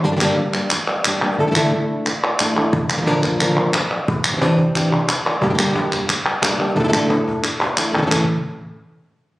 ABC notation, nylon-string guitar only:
X:1
M:4/4
L:1/8
Q:1/4=178
K:none
V:1 name="Nylon-string guitar"
[G,,D,G,_B,DG] [G,,D,G,B,DG] [G,B,DG]2 z2 [G,B,DG] [G,B,DG] | [A,,D,A,DEA] [A,,D,A,DEA] [A,DEA]2 z2 [A,DEA] [A,DEA] | z2 [_B,,D,F,_B,D_B] [F,B,DB] [B,,D,F,B,DB] [F,B,DB] z2 | z2 [C,E,CDG] [CDG] [C,E,CDG] [CDG] z2 |
[G,,D,G,_B,DG] [G,,D,G,B,DG] [G,B,DG]2 z2 [G,B,DG] [G,B,DG] | [A,,D,A,DEA] [A,,D,A,DEA] [A,DA]2 z2 [A,DEA] [A,DEA] | [A,,^C,E,A,^CA] z6 z |]